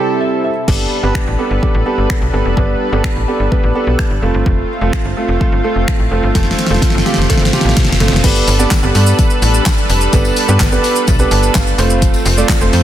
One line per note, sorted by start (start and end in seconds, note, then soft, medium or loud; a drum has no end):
0.00 0.64 C3 medium
0.00 0.50 G3 medium
0.00 0.50 C4 medium
0.00 0.64 C4 medium
0.00 0.50 E4 medium
0.00 0.64 E4 medium
0.00 0.50 G4 medium
0.00 0.50 A4 loud
0.00 0.66 A4 medium
0.00 0.19 G5 medium
0.21 0.43 E5 medium
0.44 0.66 E5 medium
0.68 0.87 G1 loud
0.68 4.19 G3 medium
0.68 0.95 B3 medium
0.68 0.96 D4 medium
0.68 4.19 D4 medium
0.68 0.96 G4 medium
0.68 0.96 A4 medium
0.68 4.19 A4 medium
0.68 4.19 B4 medium
0.68 kick loud
0.68 crash medium
1.03 1.13 G1 loud
1.03 1.31 B3 medium
1.03 1.31 D4 medium
1.03 1.31 G4 medium
1.03 1.31 B4 medium
1.15 finger snap loud
1.15 kick loud
1.27 1.36 A1 medium
1.38 1.57 B3 medium
1.38 1.57 D4 medium
1.38 1.57 G4 medium
1.38 1.57 A4 medium
1.51 1.60 G1 medium
1.62 1.81 B3 medium
1.62 1.81 D4 medium
1.62 1.81 G4 medium
1.62 1.81 A4 medium
1.62 kick loud
1.74 1.84 A1 loud
1.86 2.23 B3 medium
1.86 2.23 D4 medium
1.86 2.23 G4 medium
1.86 2.23 A4 medium
1.98 2.07 G1 medium
2.10 finger snap loud
2.10 kick loud
2.22 2.31 B1 medium
2.33 2.43 G1 medium
2.33 2.52 B3 medium
2.33 2.52 D4 medium
2.33 2.52 G4 medium
2.33 2.52 A4 medium
2.45 2.55 F1 medium
2.57 2.76 G1 loud
2.57 2.85 B3 medium
2.57 2.85 D4 medium
2.57 2.85 G4 medium
2.57 2.85 B4 medium
2.57 kick loud
2.92 3.02 G1 loud
2.92 3.20 B3 medium
2.92 3.20 D4 medium
2.92 3.20 G4 medium
2.92 3.20 A4 medium
3.04 finger snap loud
3.04 kick loud
3.16 3.26 A1 medium
3.28 3.46 B3 medium
3.28 3.46 D4 medium
3.28 3.46 G4 medium
3.28 3.47 A4 medium
3.40 3.49 G1 medium
3.51 3.70 B3 medium
3.51 3.70 D4 medium
3.51 3.70 G4 medium
3.51 3.70 B4 medium
3.51 kick loud
3.63 3.73 A1 medium
3.75 4.12 B3 medium
3.75 4.12 D4 medium
3.75 4.12 G4 medium
3.75 4.12 A4 loud
3.87 3.96 B1 medium
3.99 finger snap loud
3.99 kick loud
4.11 4.20 G1 medium
4.22 4.32 F1 medium
4.22 4.70 A3 medium
4.22 8.20 A3 medium
4.22 4.70 C4 medium
4.22 8.20 C4 medium
4.22 8.20 F4 medium
4.22 4.70 F4 medium
4.22 4.70 A4 loud
4.34 4.44 G1 medium
4.46 4.65 F1 loud
4.46 kick loud
4.81 4.91 F1 medium
4.81 5.09 A3 medium
4.81 5.09 C4 medium
4.81 5.09 F4 medium
4.81 5.09 A4 medium
4.93 finger snap loud
4.93 kick loud
5.05 5.14 G1 medium
5.17 5.35 A3 medium
5.17 5.35 C4 medium
5.17 5.35 F4 medium
5.17 5.36 A4 medium
5.29 5.38 F1 medium
5.40 5.59 A3 medium
5.40 5.59 C4 medium
5.40 5.59 F4 medium
5.40 5.59 A4 loud
5.40 kick loud
5.52 5.62 G1 medium
5.64 6.01 A3 medium
5.64 6.01 C4 medium
5.64 6.01 F4 medium
5.64 6.01 A4 medium
5.76 5.85 F1 medium
5.88 finger snap loud
5.88 kick loud
6.00 6.09 A1 medium
6.11 6.21 F1 medium
6.11 6.30 A3 medium
6.11 6.30 C4 medium
6.11 6.30 F4 medium
6.11 6.30 A4 medium
6.23 6.32 G1 medium
6.35 6.54 F1 loud
6.35 6.63 A3 medium
6.35 6.63 C4 medium
6.35 6.63 F4 medium
6.35 6.63 A4 medium
6.35 kick loud
6.35 snare medium
6.35 closed hi-hat medium
6.43 snare soft
6.51 snare medium
6.59 snare medium
6.59 closed hi-hat medium
6.67 6.80 F1 loud
6.67 6.98 A3 medium
6.67 6.98 C4 medium
6.67 snare medium
6.71 6.98 F4 medium
6.71 6.98 A4 medium
6.71 snare medium
6.82 kick loud
6.82 snare medium
6.82 closed hi-hat medium
6.90 7.03 G1 loud
6.90 snare medium
6.98 snare medium
7.05 7.24 A3 medium
7.05 7.24 C4 medium
7.05 7.24 F4 medium
7.05 7.24 G4 medium
7.05 snare medium
7.05 closed hi-hat soft
7.14 7.27 F1 medium
7.14 snare medium
7.22 snare medium
7.29 7.48 A3 medium
7.29 7.48 C4 medium
7.29 7.48 F4 medium
7.29 7.48 A4 loud
7.29 kick loud
7.29 snare medium
7.29 closed hi-hat medium
7.37 7.51 G1 loud
7.37 snare medium
7.45 snare medium
7.53 7.90 A3 medium
7.53 7.90 C4 medium
7.53 7.90 F4 medium
7.53 7.90 G4 medium
7.53 snare medium
7.53 closed hi-hat medium
7.61 7.74 A1 medium
7.61 snare medium
7.69 snare medium
7.77 kick loud
7.77 snare loud
7.77 closed hi-hat medium
7.85 7.98 F1 medium
7.85 snare medium
7.92 snare loud
8.00 8.10 G1 loud
8.00 8.19 A3 medium
8.00 8.19 C4 medium
8.00 8.19 F4 medium
8.00 8.19 A4 medium
8.00 snare medium
8.00 closed hi-hat medium
8.08 8.21 F1 loud
8.08 snare loud
8.16 snare loud
8.23 8.43 G1 loud
8.23 11.75 G3 medium
8.23 8.51 B3 medium
8.23 8.51 D4 medium
8.23 11.75 D4 medium
8.23 8.52 G4 medium
8.23 8.52 A4 medium
8.23 11.75 A4 medium
8.23 11.75 B4 medium
8.23 8.52 B4 loud
8.23 kick loud
8.23 closed hi-hat medium
8.23 crash loud
8.23 tambourine soft
8.23 shaker medium
8.36 tambourine medium
8.36 shaker medium
8.47 8.66 G1 loud
8.47 open hi-hat medium
8.47 tambourine medium
8.47 shaker medium
8.59 8.78 B3 medium
8.59 8.78 D4 medium
8.59 8.78 G4 medium
8.59 8.78 A4 medium
8.59 8.78 D5 loud
8.59 tambourine soft
8.59 shaker medium
8.71 kick loud
8.71 snare loud
8.71 clap loud
8.71 closed hi-hat medium
8.71 tambourine medium
8.71 shaker medium
8.83 8.92 G1 loud
8.83 9.57 B3 loud
8.83 9.57 D4 medium
8.83 9.57 G4 medium
8.83 9.57 A4 medium
8.83 9.57 B4 loud
8.83 shaker medium
8.95 9.14 G2 loud
8.95 open hi-hat medium
8.95 tambourine soft
8.95 shaker soft
9.07 tambourine soft
9.07 shaker medium
9.18 kick loud
9.18 closed hi-hat medium
9.18 tambourine medium
9.18 shaker medium
9.30 shaker medium
9.42 9.61 A1 medium
9.42 open hi-hat medium
9.42 shaker medium
9.54 shaker medium
9.66 kick loud
9.66 snare medium
9.66 clap loud
9.66 closed hi-hat medium
9.66 tambourine medium
9.66 shaker medium
9.78 shaker medium
9.89 10.08 F1 medium
9.89 open hi-hat medium
9.89 tambourine medium
9.89 shaker medium
10.01 shaker medium
10.13 10.32 G1 loud
10.13 10.41 B3 medium
10.13 10.41 D4 medium
10.13 10.41 G4 medium
10.13 10.41 A4 medium
10.13 10.41 B4 medium
10.13 kick loud
10.13 closed hi-hat medium
10.13 tambourine medium
10.13 shaker medium
10.25 tambourine medium
10.25 shaker medium
10.37 open hi-hat medium
10.37 tambourine medium
10.37 shaker medium
10.48 10.58 G2 loud
10.48 10.67 B3 medium
10.48 10.67 D4 medium
10.48 10.67 G4 medium
10.48 10.67 A4 medium
10.48 10.67 B4 medium
10.48 shaker medium
10.60 10.79 G1 loud
10.60 kick loud
10.60 snare loud
10.60 clap loud
10.60 closed hi-hat medium
10.60 tambourine medium
10.60 shaker medium
10.72 11.09 B3 loud
10.72 11.09 D4 medium
10.72 11.09 G4 medium
10.72 11.09 A4 medium
10.72 11.09 B4 loud
10.72 shaker medium
10.84 open hi-hat medium
10.84 tambourine soft
10.84 shaker soft
10.96 shaker medium
11.07 11.26 B1 loud
11.07 kick loud
11.07 closed hi-hat medium
11.07 tambourine medium
11.07 shaker medium
11.19 11.78 B3 medium
11.19 11.78 D4 medium
11.19 11.78 G4 medium
11.19 11.77 A4 medium
11.19 11.79 B4 loud
11.19 tambourine soft
11.19 shaker medium
11.31 11.50 G1 loud
11.31 11.53 A5 medium
11.31 open hi-hat medium
11.31 shaker medium
11.43 tambourine soft
11.43 shaker medium
11.55 11.74 G1 medium
11.55 11.99 F5 medium
11.55 kick loud
11.55 snare medium
11.55 clap loud
11.55 closed hi-hat medium
11.55 tambourine medium
11.55 shaker medium
11.67 shaker medium
11.78 12.16 F1 loud
11.78 12.26 A3 medium
11.78 12.83 A3 medium
11.78 12.26 C4 medium
11.78 12.83 C4 medium
11.78 12.26 F4 medium
11.78 12.83 F4 medium
11.78 12.26 A4 medium
11.78 12.26 C5 loud
11.78 open hi-hat medium
11.78 tambourine medium
11.78 shaker medium
11.90 shaker medium
12.02 kick loud
12.02 closed hi-hat medium
12.02 tambourine medium
12.02 shaker medium
12.14 tambourine medium
12.14 shaker medium
12.26 12.44 F1 loud
12.26 open hi-hat medium
12.26 tambourine medium
12.26 shaker medium
12.37 12.56 A3 medium
12.37 12.56 C4 medium
12.37 12.56 F4 medium
12.37 12.56 A4 medium
12.37 12.56 D5 loud
12.37 tambourine soft
12.37 shaker medium
12.49 kick loud
12.49 snare loud
12.49 clap loud
12.49 closed hi-hat medium
12.49 tambourine medium
12.49 shaker medium
12.61 12.70 F1 loud
12.61 12.83 A3 medium
12.61 12.83 C4 medium
12.61 12.83 F4 medium
12.61 12.83 A4 medium
12.61 12.83 C5 loud
12.61 shaker medium
12.73 12.83 F2 loud
12.73 open hi-hat medium
12.73 tambourine soft
12.73 shaker soft